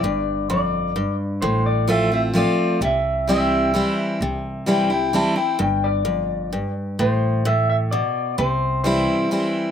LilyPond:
<<
  \new Staff \with { instrumentName = "Clean electric guitar" } { \time 3/4 \key c \major \tempo 4 = 129 d''4 d''4. r8 | c''8 d''8 e''8 e''8 d''4 | e''4 e''4. r8 | r4 g''8 g''8 a''8 g''8 |
g''8 d''2 r8 | c''4 e''8 e''8 d''4 | c''4 c''4. r8 | }
  \new Staff \with { instrumentName = "Steel-string acoustic guitar" } { \clef bass \time 3/4 \key c \major << { r2. | r4 <f a c' f'>8 <c' f'>8 <f a c' f'>4 | r4 <e g c' e'>4 <e g c' e'>4 | r4 <e g c' e'>8 <c' e'>8 <e g c' e'>8 <c' e'>8 |
r2. | r2. | r4 <e g c' e'>4 <e g c' e'>4 | } \\ { g,4 f,4 g,4 | a,2 r4 | c2 r4 | c2 r4 |
g,4 f,4 g,4 | a,4 a,4 b,4 | c2 r4 | } >> }
  \new Staff \with { instrumentName = "Upright bass" } { \clef bass \time 3/4 \key c \major g,,2. | a,,2. | c,2. | c,2. |
g,,2. | a,,2. | c,2 r4 | }
>>